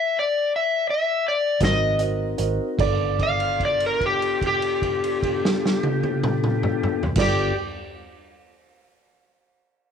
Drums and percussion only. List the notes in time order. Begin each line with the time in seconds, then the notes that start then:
1.61 kick, snare, closed hi-hat
1.99 closed hi-hat
2.38 closed hi-hat
2.79 kick, crash
3.19 kick, crash
3.40 crash
3.60 kick, crash
3.80 crash
4.01 kick, crash
4.22 crash
4.41 kick, crash
4.62 crash
4.82 kick, crash
5.04 crash
5.23 kick, crash
5.45 snare
5.66 snare
5.83 high tom
6.03 high tom
6.23 mid tom
6.44 mid tom
6.63 mid tom
6.83 mid tom
7.03 floor tom
7.16 kick, snare, crash